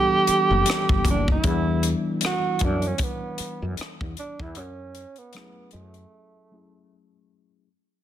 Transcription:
Already playing: tine electric piano E3 G3 B3 D4 F#4 A4, tenor saxophone G4
0.27 muted fretless electric bass stroke, closed hi-hat
0.50 fretless electric bass F#1
0.66 cross-stick, closed hi-hat
0.89 fretless electric bass G1, kick
1.05 fretless electric bass F#1, kick, closed hi-hat
1.10 tenor saxophone D4
1.28 tenor saxophone E4, kick
1.44 fretless electric bass E2, tine electric piano E3 G3 B3 D4 E4, kick, closed hi-hat
1.83 closed hi-hat
2.21 cross-stick, closed hi-hat
2.26 tenor saxophone F#4
2.59 fretless electric bass F#2, kick, closed hi-hat
2.65 tenor saxophone D4
2.82 closed hi-hat
2.87 tenor saxophone C#4
2.98 kick, closed hi-hat
3.03 tenor saxophone B3
3.38 muted fretless electric bass stroke, closed hi-hat
3.62 fretless electric bass F#2
3.77 muted fretless electric bass stroke, cross-stick, closed hi-hat
4.01 fretless electric bass E2, kick
4.17 tenor saxophone D4, closed hi-hat
4.40 fretless electric bass E2, tenor saxophone E4, kick
4.55 fretless electric bass F#2, tenor saxophone C#4, closed hi-hat
4.95 closed hi-hat
5.16 tenor saxophone B3, closed hi-hat
5.33 tine electric piano F#3 A3 C#4 E4, cross-stick, closed hi-hat
5.37 tine electric piano G#4
5.71 fretless electric bass F#2, tenor saxophone A3, closed hi-hat
5.94 closed hi-hat
6.51 tine electric piano F#3 A3 C#4 E4 G#4

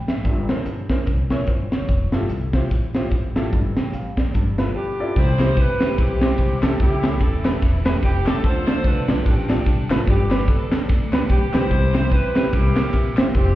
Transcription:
0.07 upright bass G#1, grand piano E5, snare, closed hi-hat
0.24 upright bass G1, grand piano G2, kick, closed hi-hat
0.48 upright bass A#1, grand piano C#4 E4 A#4 C5, snare, closed hi-hat
0.66 upright bass G1, closed hi-hat
0.90 grand piano C#4 E4 A#4 C5, kick, snare, closed hi-hat
1.07 upright bass C2, kick, closed hi-hat
1.30 upright bass A#1, grand piano C#4 E4 A#4 C#5, snare, closed hi-hat
1.47 upright bass G1, grand piano C5, kick, closed hi-hat
1.72 upright bass F#1, grand piano C#5, snare, closed hi-hat
1.88 upright bass F1, kick, closed hi-hat
2.12 upright bass G1, grand piano E4 F4 G4 A4, snare, closed hi-hat
2.29 upright bass C2, closed hi-hat
2.53 grand piano E4 F4 G4 C5, kick, snare, closed hi-hat
2.71 upright bass A1, kick, closed hi-hat
2.95 grand piano E4 F4 G4 C5, snare, closed hi-hat
3.11 upright bass A1, kick, closed hi-hat
3.36 upright bass G#1, grand piano E4 F4 G4 A4, snare, closed hi-hat
3.52 upright bass G1, grand piano G2, kick, closed hi-hat
3.77 upright bass B1, grand piano G5, snare, closed hi-hat
3.93 upright bass A1, grand piano F5, closed hi-hat
4.17 grand piano D5, kick, snare, closed hi-hat
4.34 upright bass G1, grand piano G2, kick, closed hi-hat
4.58 grand piano E4 F4 A4 B4, snare, closed hi-hat
4.75 saxophone section B3 D4 G4
5.00 grand piano E4 F4 A4 D5
5.16 upright bass C2, grand piano C3, saxophone section E4 G4 C5, kick, crash
5.39 grand piano G3 C4 E4 G4 C5, snare, clap, ride bell
5.56 upright bass G1, saxophone section E4 G4 B4, kick, ride bell
5.81 grand piano G3 C4 E4 G4 C5, snare, clap, ride bell
5.98 upright bass B1, saxophone section C4 E4 G4, kick, ride bell
6.21 grand piano G3 C4 E4 G4 C5, snare, clap, ride bell
6.38 upright bass C2, kick, ride bell
6.63 upright bass D2, grand piano G3 C4 E4 G4 A4, snare, clap, ride bell
6.79 upright bass C#2, grand piano C#3, saxophone section E4 G4, kick, ride bell
7.04 grand piano A3 C#4 E4 G4 A4, snare, clap, ride bell
7.20 upright bass E1, saxophone section E4 A4, kick, ride bell
7.45 grand piano A3 C#4 E4 G4 B4, snare, clap, ride bell
7.62 upright bass E1, kick, ride bell
7.85 grand piano A3 C#4 E4 G4 B4, snare, clap, ride bell
8.02 upright bass F1, saxophone section G4, kick, ride bell
8.26 upright bass D#2, grand piano A3 C#4 E4 G4 A4, saxophone section A4, snare, clap, ride bell
8.44 upright bass D2, grand piano D3, saxophone section F4 A4 C5, kick, ride bell
8.67 grand piano A3 D4 F4 A4 D5, snare, clap, ride bell
8.84 upright bass C2, saxophone section D4 F4 B4, kick, ride bell
9.08 upright bass B1, grand piano A3 D4 F4 A4 D5, snare, clap, ride bell
9.26 upright bass A1, saxophone section D4 G4, kick, ride bell
9.49 grand piano A3 D4 F4 A4 D5, snare, clap, ride bell
9.66 upright bass C2, kick, ride bell
9.90 upright bass G#1, grand piano A3 D4 F4 A4 B4, snare, clap, ride bell
10.07 upright bass G1, grand piano G2, saxophone section B3 D4 G4, kick, ride bell
10.30 grand piano G3 B3 D4 G4 B4, snare, clap, ride bell
10.48 upright bass D2, saxophone section D4 A4, kick, ride bell
10.72 grand piano G3 B3 D4 G4 A4, snare, clap, ride bell
10.89 upright bass D2, kick, ride bell
11.13 grand piano G3 B3 D4 G4 B4, snare, clap, ride bell
11.29 upright bass B1, saxophone section G4, kick, ride bell
11.53 upright bass C#2, grand piano G3 B3 D4 G4 B4, saxophone section E4 G4 C5, snare, clap, ride bell
11.71 upright bass C2, grand piano C3, kick, ride bell
11.94 grand piano G3 C4 E4 G4 C5, snare, clap, ride bell
12.12 upright bass G1, saxophone section E4 G4 B4, kick, ride bell
12.36 grand piano G3 C4 E4 G4 C5, snare, clap, ride bell
12.53 upright bass C2, grand piano C3, saxophone section A#3 E4 G4, kick, ride bell
12.76 grand piano A#3 C4 E4 G4 A#4, snare, clap, ride bell
12.93 upright bass A#1, kick, ride bell
13.17 upright bass F#1, grand piano A#3 C4 E4 G4 C5, snare, clap, ride bell
13.34 upright bass F1, saxophone section C4 G4, kick, ride bell

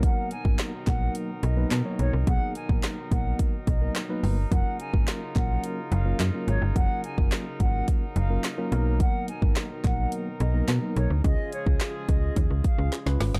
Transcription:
Already playing: brass ensemble B2 D#3 F#3 D#4 A#4, tine electric piano F#3 A#3 B3 D#4 A#4
0.03 flute F#5, kick, closed hi-hat
0.31 flute G#5, closed hi-hat
0.45 fm bass G#1, tine electric piano F#3 A#3 B3 D#4 A#4, kick
0.59 snare, clap, closed hi-hat
0.87 fm bass A#1, tine electric piano F#3 A#3 B3 D#4 A#4, flute F#5, kick, clap, closed hi-hat
1.15 closed hi-hat
1.43 fm bass B1, flute D#5, closed hi-hat
1.57 tine electric piano F#3 A#3 B3 D#4 B4
1.71 fm bass B2, snare, clap, closed hi-hat
1.85 tine electric piano F#3 A#3 B3 D#4 C#5
1.99 fm bass B1, flute C#5, closed hi-hat
2.13 fm bass C2
2.27 fm bass B1, tine electric piano F#3 A#3 B3 D#4 G#4, flute F#5, kick, closed hi-hat
2.55 flute G#5, closed hi-hat
2.69 fm bass A#1, tine electric piano F#3 A#3 B3 D#4 A#4, kick
2.83 snare, clap, closed hi-hat
3.11 fm bass A#1, tine electric piano F#3 A#3 B3 D#4 A#4, flute F#5, kick, closed hi-hat
3.39 kick, closed hi-hat
3.67 fm bass B1, flute D#5, kick, closed hi-hat
3.81 tine electric piano F#3 A#3 B3 D#4 A#4
3.95 snare, clap, closed hi-hat
4.09 tine electric piano F#3 A#3 B3 D#4 B4
4.23 fm bass G1, open hi-hat
4.51 fm bass F#1, brass ensemble C#3 F4, tine electric piano F#3 A#3 C#4 F4 A#4, flute F#5, kick, closed hi-hat
4.80 flute G#5, closed hi-hat
4.93 fm bass G#1, tine electric piano F#3 A#3 C#4 F4 A#4, kick
5.07 snare, clap, closed hi-hat
5.35 fm bass A#1, tine electric piano F#3 A#3 C#4 F4 A#4, flute F#5, kick, clap, closed hi-hat
5.64 closed hi-hat
5.92 fm bass F#1, flute F5, closed hi-hat
6.06 tine electric piano F#3 A#3 C#4 F4 A#4
6.20 fm bass F#2, snare, clap, closed hi-hat
6.34 tine electric piano F#3 A#3 C#4 F4 A#4
6.48 fm bass G#1, flute C#5, closed hi-hat
6.62 fm bass G1
6.76 fm bass F#1, tine electric piano F#3 A#3 C#4 F4 A#4, flute F#5, kick, closed hi-hat
7.04 flute G#5, closed hi-hat
7.18 fm bass F#1, tine electric piano F#3 A#3 C#4 F4 A#4, kick
7.32 snare, clap, closed hi-hat
7.60 fm bass G#1, tine electric piano F#3 A#3 C#4 F4 A#4, flute F#5, kick, closed hi-hat
7.88 kick, closed hi-hat
8.16 fm bass F#1, flute F5, closed hi-hat
8.30 tine electric piano F#3 A#3 C#4 F4 A#4
8.44 snare, clap, closed hi-hat
8.58 tine electric piano F#3 A#3 C#4 F4 A#4
8.72 fm bass B1, brass ensemble B2 D#3, tine electric piano F#3 A#3 B3 D#4 A#4, closed hi-hat
9.00 flute F#5, kick, closed hi-hat
9.28 flute G#5, closed hi-hat
9.42 fm bass G#1, tine electric piano F#3 A#3 B3 D#4 A#4, kick
9.56 snare, clap, closed hi-hat
9.84 fm bass A#1, tine electric piano F#3 A#3 B3 D#4 A#4, flute F#5, kick, clap, closed hi-hat
10.12 closed hi-hat
10.40 fm bass B1, flute D#5, closed hi-hat
10.54 tine electric piano F#3 A#3 B3 D#4 A#4
10.68 fm bass B2, snare, clap, closed hi-hat
10.82 tine electric piano F#3 A#3 B3 D#4 A#4
10.96 fm bass B1, flute C#5, closed hi-hat
11.10 fm bass D2
11.24 fm bass C#2, brass ensemble C#3 F3 G#3 F4 G#4, tine electric piano C#4 F4 G#4, flute D#5, kick, closed hi-hat
11.52 flute C#5, closed hi-hat
11.66 fm bass C#2, tine electric piano C#4 F4 G#4, kick
11.80 snare, clap, closed hi-hat
12.08 fm bass C#2, tine electric piano C#4 F4 G#4, flute D#5, kick, closed hi-hat
12.36 fm bass D#2, kick, closed hi-hat
12.50 fm bass C#2
12.64 flute F5, kick, closed hi-hat
12.78 fm bass C#2, tine electric piano C#4 F4 G#4
12.92 snare, clap, closed hi-hat
13.06 fm bass C#2, tine electric piano C#4 F4 B4, snare
13.20 fm bass G#1, snare, open hi-hat
13.34 fm bass G1, snare

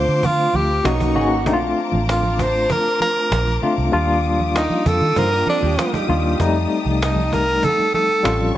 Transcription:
Already playing: tine electric piano A3 C4 D4 F4, tenor saxophone C5, string section C5 F5 A5 D6
0.08 fingered electric bass D3, cajon slap
0.23 tenor saxophone F4, cajon bass, cajon slap, muted conga, high conga, low conga
0.53 fingered electric bass D2, tenor saxophone G4, cajon slap, high conga
0.70 cajon slap
0.84 fingered electric bass B1, tine electric piano A#3 C#4 D#4 F#4, string section B3 D#5 A#5 C#6, clean electric guitar C#4 A#4, tenor saxophone D#4, cajon slap, muted conga, high conga
1.00 cajon bass, muted conga, high conga
1.15 fingered electric bass G#1, tine electric piano A#3 C#4 D#4 F#4, clean electric guitar B3 G#4, cajon slap, low conga
1.31 clean electric guitar A#3 F#4, cajon slap
1.46 fingered electric bass A#1, tine electric piano A3 C4 D4 D#4, string section C5 A5 A#5 D6, cajon bass
1.53 tine electric piano F4
1.62 muted conga
1.78 cajon slap
1.92 fingered electric bass A1, cajon slap, high conga
2.07 tenor saxophone F4, cajon slap, muted conga
2.23 high conga
2.39 tenor saxophone C5, cajon bass, cajon slap, low conga
2.55 cajon slap
2.70 tenor saxophone A#4, cajon bass, cajon slap, high conga, low conga
2.85 cajon slap
3.00 tenor saxophone A#4, cajon slap, high conga
3.16 cajon slap
3.31 fingered electric bass A#1, cajon slap, high conga
3.47 high conga
3.61 tine electric piano A3 C4 D4 F4, cajon slap, low conga
3.77 fingered electric bass C2, cajon slap
3.92 fingered electric bass D#2, tine electric piano G3 A#3 D4 F4, string section G4 F5 D#6, cajon slap, muted conga
4.08 cajon slap, muted conga
4.25 cajon slap
4.39 cajon slap, high conga
4.54 tenor saxophone D#4, cajon slap, muted conga
4.70 cajon slap, muted conga, high conga
4.86 fingered electric bass F2, tenor saxophone A4, cajon bass, cajon slap, low conga
5.01 fingered electric bass D#3, cajon slap
5.16 fingered electric bass G2, clean electric guitar D#4 C5, tenor saxophone A#4, cajon bass, cajon slap, muted conga, high conga, low conga
5.32 clean electric guitar D4 A#4, cajon slap
5.47 clean electric guitar C4 A4, tenor saxophone D4, cajon slap, high conga
5.63 fingered electric bass D#2, clean electric guitar A#3 G4, cajon slap
5.78 clean electric guitar A3 F4, cajon slap, muted conga, high conga
5.93 clean electric guitar G3 D#4, cajon bass, high conga
6.08 fingered electric bass D#2, tine electric piano G3 A#3 D4 F4, low conga
6.24 cajon slap
6.40 fingered electric bass F2, tine electric piano G3 A3 C4 D#4, string section A5, cajon bass
6.55 muted conga
6.72 cajon slap
6.85 fingered electric bass C2, cajon slap, high conga
7.02 tenor saxophone D#4, cajon slap
7.16 muted conga, high conga
7.32 tenor saxophone A#4, cajon bass, cajon slap, low conga
7.48 cajon slap
7.63 tenor saxophone A4, cajon bass, cajon slap, muted conga, high conga, low conga
7.78 cajon slap, muted conga
7.93 tenor saxophone A4, cajon slap, high conga
8.09 cajon slap
8.23 fingered electric bass A1, tine electric piano G3 C4 C#4 F4, string section C#6, cajon slap, muted conga, high conga
8.41 muted conga, high conga
8.55 tine electric piano G3

